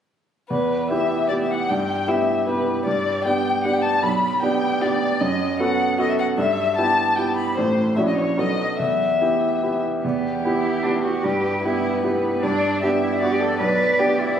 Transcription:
0.50 E2 B4
0.90 B3 E4 G4 E5
1.29 B3 E4 G4 D5
1.40 E5
1.51 F#5
1.69 G2 G5
2.08 B3 E4 G4 E5
2.47 B3 E4 G4 B4
2.86 G2 D5
3.25 B3 D4 G4 G5
3.63 B3 D4 G4 F#5
3.73 G5
3.82 A5
4.03 B1 B5
4.42 B3 D4 G4 G5
4.81 B3 D4 G4 D5
5.20 F#2 D#5
5.59 B3 F#4 A4 F#5
5.98 B3 F#4 A4 D#5
6.09 E5
6.19 F#5
6.38 G2 E5
6.77 B3 E4 G4 A5
7.16 B3 E4 G4 G5
7.27 A5
7.37 B5
7.58 A1 A3 E4 C5
7.96 A#1 C#4 E4 F#4 E5
8.07 D#5
8.16 C#5
8.38 B1 B3 F#4 A4 D#5
8.79 E2 E5
9.21 B3 E4 G4
9.63 B3 E4 G4
10.03 E2 B3 G4
10.43 B3 E4 G4
10.83 B3 D4 E4 G4
10.94 E4
11.03 F#4
11.24 G2 G4 B4
11.64 B3 E4 G4 B4
12.03 B3 E4 G4
12.43 G2 D4 D5
12.82 B3 D4 G4 E5
13.02 E4
13.20 B3 D4 F#4 G4 D5
13.32 G4
13.41 A4
13.60 B1 B4 D5
13.99 B3 D4 G4
14.20 E4
14.37 B4

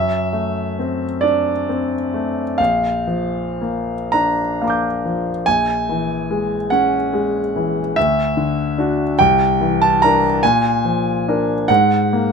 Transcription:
Already playing: F#2 E5
0.33 A3
0.79 C4
1.21 D4 D5
1.69 C4
2.14 A3
2.58 A#1 F5
3.07 F3
3.61 A#3
4.12 D4 A#5
4.61 A#3 F5 A#5
4.67 D6 G6
5.05 F3
5.46 A#1 G#5
5.89 E3
6.31 G#3
6.70 C#4 F#5
7.13 G#3
7.56 E3
7.96 D2 E5
8.37 D3
8.78 D4 F#4
9.19 C2 G5
9.61 E3
9.82 A5
10.02 D4 A#4 A#5
10.43 A#2 G#5
10.85 F3
11.28 D4 A#4
11.68 G#2 F#5
12.13 A#3

